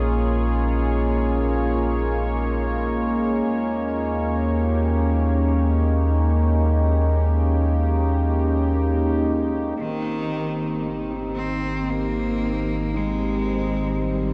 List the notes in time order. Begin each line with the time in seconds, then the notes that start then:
Already playing: A#1 G#3 A#3 C#4 D#4 F4 G#4 C#5
3.47 D#2
4.11 D#4
4.47 G4
9.76 G#1 D#3 C4 D#4
10.12 C4
10.31 C5
10.83 A#3
11.13 D#4
11.35 C4
11.90 A#3
12.94 G#3 D#4
14.02 G3